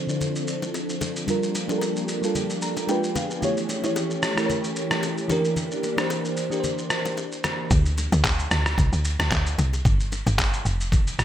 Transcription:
0.00 0.07 D3 medium
0.00 3.38 F3 medium
0.00 1.26 C4 medium
0.00 0.08 D4 medium
0.00 1.26 D4 medium
0.00 0.16 F4 medium
0.00 1.26 A4 medium
0.00 0.11 C5 medium
0.07 0.93 D3 medium
0.07 0.94 D4 medium
0.07 0.15 E4 medium
0.07 0.95 C5 medium
0.07 shaker medium
0.16 0.98 F4 medium
0.21 low conga medium
0.21 shaker medium
0.35 shaker soft
0.47 shaker medium
0.62 low bongo medium
0.62 shaker medium
0.74 high bongo medium
0.74 shaker medium
0.89 shaker soft
1.01 high bongo medium
1.01 low bongo medium
1.01 low conga medium
1.01 shaker medium
1.16 shaker medium
1.27 1.60 G3 medium
1.27 2.87 A#3 medium
1.27 1.61 D4 medium
1.27 3.40 D4 medium
1.27 1.61 F4 medium
1.27 2.87 G4 medium
1.27 1.62 A#4 medium
1.27 low conga medium
1.27 shaker medium
1.43 shaker soft
1.55 low bongo soft
1.55 shaker medium
1.68 2.11 G3 medium
1.68 2.11 D4 medium
1.68 2.12 F4 medium
1.68 1.76 A4 medium
1.68 low bongo medium
1.68 shaker soft
1.78 2.16 A#4 medium
1.78 high bongo medium
1.78 shaker medium
1.96 shaker soft
2.08 shaker medium
2.22 2.88 G3 medium
2.22 2.87 D4 medium
2.22 2.89 F4 medium
2.22 2.90 A4 medium
2.22 shaker medium
2.35 low conga medium
2.35 shaker medium
2.50 shaker soft
2.62 2.87 A#5 medium
2.62 shaker loud
2.77 low bongo medium
2.77 shaker medium
2.87 3.32 G#3 medium
2.87 3.42 B3 medium
2.87 3.33 D4 medium
2.87 3.33 F4 medium
2.87 3.42 G#4 medium
2.87 3.34 B4 medium
2.87 3.14 G5 medium
2.87 high bongo medium
2.87 shaker medium
3.04 shaker medium
3.15 3.41 F5 medium
3.15 high bongo medium
3.15 low bongo medium
3.15 low conga medium
3.15 shaker medium
3.31 shaker soft
3.41 7.67 E3 medium
3.41 3.74 A3 medium
3.41 5.28 A3 medium
3.41 5.28 C#4 medium
3.41 3.75 E4 medium
3.41 7.67 G4 medium
3.41 3.75 G4 medium
3.41 3.76 C#5 medium
3.41 low conga medium
3.41 shaker medium
3.57 shaker soft
3.69 low bongo soft
3.69 shaker medium
3.82 4.25 A3 medium
3.82 4.25 E4 medium
3.82 4.26 G4 medium
3.82 4.27 C#5 medium
3.82 low bongo medium
3.82 shaker medium
3.96 high bongo medium
3.96 shaker medium
4.10 shaker soft
4.23 cross-stick medium
4.23 shaker medium
4.36 5.22 A3 medium
4.36 5.22 E4 medium
4.36 5.23 G4 medium
4.36 4.44 A#4 medium
4.36 cross-stick medium
4.36 shaker medium
4.46 5.27 C#5 medium
4.46 low conga medium
4.46 shaker medium
4.64 shaker soft
4.76 shaker loud
4.91 cross-stick medium
4.91 low bongo medium
4.91 shaker medium
5.03 high bongo medium
5.03 shaker medium
5.18 shaker soft
5.28 5.82 E3 medium
5.28 7.68 A#3 medium
5.28 5.83 D4 medium
5.28 7.68 D4 medium
5.28 5.84 G4 medium
5.28 5.84 A#4 loud
5.28 high bongo medium
5.28 low bongo medium
5.28 low conga medium
5.28 shaker medium
5.45 shaker medium
5.56 low conga medium
5.56 shaker medium
5.71 shaker soft
5.83 low bongo soft
5.83 shaker medium
5.97 6.39 E3 medium
5.97 6.40 D4 medium
5.97 6.40 G4 medium
5.97 6.41 C5 medium
5.97 cross-stick loud
5.97 low bongo medium
5.97 shaker medium
6.10 high bongo medium
6.10 shaker medium
6.25 shaker soft
6.37 shaker medium
6.50 7.36 E3 medium
6.50 7.37 D4 medium
6.50 7.37 G4 medium
6.50 6.59 A#4 medium
6.50 shaker medium
6.60 7.41 C5 medium
6.60 low conga medium
6.60 shaker medium
6.78 shaker soft
6.90 cross-stick medium
6.90 shaker loud
7.05 low bongo medium
7.05 shaker medium
7.17 high bongo medium
7.17 shaker medium
7.32 shaker medium
7.44 cross-stick medium
7.44 high bongo medium
7.44 low bongo medium
7.44 low conga medium
7.44 shaker medium
7.71 8.08 D2 loud
7.71 kick loud
7.71 low conga medium
7.71 shaker medium
7.86 shaker medium
7.98 low bongo medium
7.98 shaker medium
8.12 8.47 D2 loud
8.12 low bongo medium
8.12 shaker medium
8.24 kick loud
8.24 clap medium
8.24 high bongo medium
8.24 shaker medium
8.39 shaker medium
8.51 8.75 D2 medium
8.51 cross-stick medium
8.51 shaker medium
8.66 cross-stick loud
8.66 shaker medium
8.78 8.91 C2 loud
8.78 kick loud
8.78 low conga medium
8.78 shaker medium
8.93 9.17 D2 medium
8.93 shaker medium
9.05 shaker loud
9.19 9.30 D2 medium
9.19 cross-stick loud
9.19 low bongo medium
9.19 shaker medium
9.32 9.56 D2 loud
9.32 kick medium
9.32 clap medium
9.32 high bongo medium
9.32 shaker medium
9.46 shaker medium
9.58 9.83 C2 medium
9.58 low bongo medium
9.58 low conga medium
9.58 shaker medium
9.73 high bongo medium
9.73 shaker medium
9.85 10.23 G1 loud
9.85 kick loud
9.85 low conga medium
9.85 shaker medium
10.00 shaker medium
10.12 low bongo medium
10.12 shaker medium
10.27 10.62 G1 loud
10.27 low bongo medium
10.27 shaker medium
10.39 kick loud
10.39 clap loud
10.39 high bongo medium
10.39 shaker medium
10.53 shaker soft
10.65 11.15 F1 medium
10.65 shaker medium
10.80 shaker medium
10.92 kick loud
10.92 low conga medium
10.92 shaker medium
11.07 shaker medium
11.19 11.24 G1 loud
11.19 cross-stick loud
11.19 shaker loud

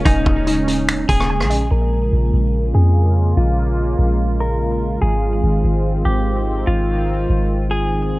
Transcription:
0.00 1.67 C#3 medium
0.00 1.67 G#3 medium
0.00 1.67 A#3 medium
0.00 0.26 C#4 medium
0.00 1.68 C#4 medium
0.00 1.09 D#5 medium
0.05 0.26 D#1 loud
0.05 1.05 D#4 loud
0.05 1.29 G#5 loud
0.05 kick loud
0.05 closed hi-hat medium
0.26 1.06 D#1 loud
0.26 kick loud
0.47 1.71 D#4 loud
0.47 closed hi-hat medium
0.68 1.71 C#4 medium
0.68 closed hi-hat medium
0.89 finger snap loud
0.89 closed hi-hat medium
1.09 1.42 D#1 loud
1.09 1.67 G#4 loud
1.09 kick loud
1.09 closed hi-hat medium
1.20 cross-stick medium
1.30 1.71 G#5 loud
1.40 1.70 A#1 loud
1.40 cross-stick loud
1.50 1.71 D#5 medium
1.50 closed hi-hat medium
1.71 2.11 A#1 loud
1.71 4.99 C#3 medium
1.71 8.19 G#3 medium
1.71 4.99 A#3 medium
1.71 8.19 F4 medium
1.71 2.71 A#4 medium
2.12 2.32 A#1 loud
2.33 2.73 A#1 loud
2.74 3.34 F2 loud
2.74 3.33 G#4 medium
3.37 3.96 A#1 loud
3.37 4.36 F4 medium
3.99 4.98 A#1 loud
4.41 4.99 A#4 medium
5.02 5.42 G#1 loud
5.02 8.19 D#3 medium
5.02 8.19 C4 medium
5.02 6.01 G#4 loud
5.43 5.63 G#1 loud
5.64 6.04 G#1 loud
6.05 6.65 G#1 loud
6.05 6.64 G4 medium
6.67 7.27 G#1 loud
6.67 7.67 F4 loud
7.30 8.14 G#1 loud
7.71 8.19 G#4 medium
8.12 8.19 G1 loud

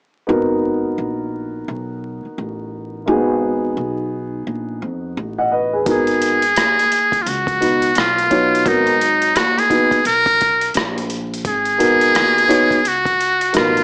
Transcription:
0.27 0.95 G#1 medium
0.27 3.03 B3 medium
0.27 3.03 D#4 medium
0.27 3.04 F#4 medium
0.27 3.04 A#4 medium
0.98 1.64 A#1 medium
1.68 2.22 B1 medium
2.25 muted upright bass stroke soft
2.38 3.04 A1 medium
3.06 3.74 G#1 medium
3.06 3.15 A#3 medium
3.06 5.82 D#4 medium
3.06 5.83 F#4 medium
3.06 4.79 G#4 medium
3.13 5.84 B3 medium
3.77 4.43 B1 medium
4.47 4.80 A#1 medium
4.82 5.15 F2 medium
5.17 5.83 A1 medium
5.38 5.50 D#5 medium
5.38 5.51 F#5 medium
5.51 5.71 B4 medium
5.51 5.72 D#5 medium
5.73 6.07 G#4 medium
5.73 6.06 B4 medium
5.85 6.53 G#1 medium
5.85 6.38 B3 medium
5.85 6.39 D#4 soft
5.85 6.39 F#4 medium
5.85 6.39 A#4 medium
5.85 kick loud
5.85 closed hi-hat medium
5.91 7.23 G#4 medium
6.07 closed hi-hat soft
6.22 closed hi-hat medium
6.42 closed hi-hat soft
6.56 7.23 D#2 medium
6.56 cross-stick medium
6.56 closed hi-hat medium
6.79 closed hi-hat soft
6.92 closed hi-hat medium
7.12 kick medium
7.12 closed hi-hat soft
7.22 7.30 F4 medium
7.26 7.92 C#2 medium
7.26 7.99 F#4 medium
7.26 closed hi-hat medium
7.47 kick medium
7.47 closed hi-hat soft
7.60 7.88 B3 medium
7.60 7.88 D#4 soft
7.60 7.88 F#4 soft
7.60 7.88 B4 medium
7.60 closed hi-hat medium
7.82 closed hi-hat soft
7.95 8.62 B1 medium
7.95 8.69 F4 medium
7.95 cross-stick loud
7.95 closed hi-hat medium
8.18 closed hi-hat soft
8.30 9.30 F#3 medium
8.30 8.63 B3 medium
8.30 8.63 D#4 medium
8.30 9.31 C#5 medium
8.30 kick medium
8.30 closed hi-hat medium
8.55 closed hi-hat medium
8.65 9.32 G#1 medium
8.65 8.92 B3 medium
8.65 8.92 D#4 medium
8.65 9.38 D#4 medium
8.65 8.93 F#4 medium
8.65 8.93 A#4 medium
8.65 kick loud
8.65 closed hi-hat medium
8.87 closed hi-hat soft
9.01 closed hi-hat medium
9.22 closed hi-hat soft
9.36 10.02 D#2 medium
9.36 9.60 F#4 medium
9.36 cross-stick medium
9.36 closed hi-hat medium
9.58 10.06 G#4 medium
9.58 cross-stick soft
9.58 closed hi-hat soft
9.69 9.97 B3 medium
9.69 9.97 D#4 medium
9.69 9.97 F#4 soft
9.69 9.98 B4 medium
9.69 kick medium
9.69 closed hi-hat medium
9.91 kick medium
9.91 closed hi-hat soft
10.05 10.72 B1 medium
10.05 10.72 A#4 medium
10.05 closed hi-hat medium
10.26 kick medium
10.26 closed hi-hat soft
10.41 kick medium
10.41 closed hi-hat medium
10.61 closed hi-hat medium
10.74 11.41 A#1 medium
10.74 cross-stick loud
10.74 closed hi-hat medium
10.98 closed hi-hat soft
11.10 closed hi-hat medium
11.34 closed hi-hat medium
11.45 12.11 G#1 medium
11.45 12.89 G#4 loud
11.45 kick loud
11.45 closed hi-hat medium
11.65 closed hi-hat soft
11.78 12.46 B3 medium
11.78 12.47 D#4 medium
11.78 12.47 F#4 medium
11.78 12.79 A#4 medium
11.78 closed hi-hat medium
12.01 closed hi-hat soft
12.15 12.84 D#2 medium
12.15 cross-stick loud
12.15 closed hi-hat medium
12.38 closed hi-hat soft
12.48 12.76 B3 medium
12.48 12.76 D#4 medium
12.48 12.76 F#4 medium
12.48 12.76 C#5 medium
12.48 closed hi-hat medium
12.71 kick medium
12.71 closed hi-hat soft
12.84 13.51 C#2 medium
12.84 13.56 F#4 medium
12.84 closed hi-hat medium
13.05 kick medium
13.05 closed hi-hat soft
13.21 closed hi-hat medium
13.41 closed hi-hat soft
13.53 13.84 A1 medium
13.53 13.84 F#3 medium
13.53 13.84 B3 medium
13.53 13.84 D#4 soft
13.53 13.84 F4 medium
13.53 13.84 A#4 medium
13.53 cross-stick loud
13.53 closed hi-hat medium
13.77 closed hi-hat soft

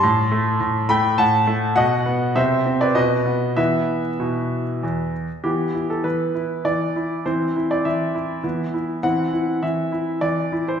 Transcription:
0.00 0.59 A2 medium
0.00 0.86 A5 medium
0.00 0.90 C6 medium
0.32 0.88 A3 medium
0.60 1.17 A2 medium
0.89 1.46 A3 medium
0.89 1.17 G5 medium
0.89 1.18 B5 medium
1.18 1.75 A2 medium
1.18 1.74 F#5 medium
1.18 1.77 A5 loud
1.47 1.76 A3 medium
1.76 2.34 B2 medium
1.76 2.32 D#5 medium
1.76 2.35 F#5 medium
2.06 2.35 B3 medium
2.36 2.94 C3 medium
2.36 2.78 C5 medium
2.36 2.81 E5 medium
2.66 2.95 C4 medium
2.81 2.95 B4 medium
2.81 2.96 D5 medium
2.95 3.55 B2 medium
2.95 3.54 B4 medium
2.95 3.57 D#5 medium
3.26 3.55 B3 medium
3.56 4.01 E3 medium
3.56 4.07 B3 soft
3.56 4.07 E4 soft
3.56 5.10 B4 medium
3.56 5.13 E5 medium
4.20 4.64 B2 medium
4.83 5.26 E2 soft
5.44 6.02 E3 soft
5.44 7.22 B3 soft
5.44 5.73 E4 soft
5.44 5.89 G4 medium
5.74 6.33 E4 soft
5.90 6.05 A4 medium
6.04 6.63 E3 soft
6.04 6.65 B4 medium
6.35 6.95 E4 soft
6.65 7.24 E3 soft
6.65 7.26 D5 medium
6.96 7.25 E4 soft
7.26 7.84 E3 soft
7.26 8.40 C4 soft
7.26 7.54 E4 soft
7.26 7.70 C5 medium
7.56 8.13 E4 soft
7.71 7.86 D5 medium
7.85 8.42 E3 soft
7.85 8.74 E5 medium
8.15 8.42 E4 soft
8.44 9.01 E3 medium
8.44 8.99 B3 soft
8.44 8.72 E4 soft
8.74 9.02 E4 soft
9.03 9.61 E3 soft
9.03 10.78 C4 soft
9.03 9.31 E4 soft
9.03 9.62 F#5 medium
9.33 9.91 E4 soft
9.63 10.20 E3 soft
9.63 10.22 E5 medium
9.92 10.51 E4 soft
10.21 10.80 E3 soft
10.21 10.67 D5 medium
10.52 10.80 E4 soft
10.68 10.80 C5 medium

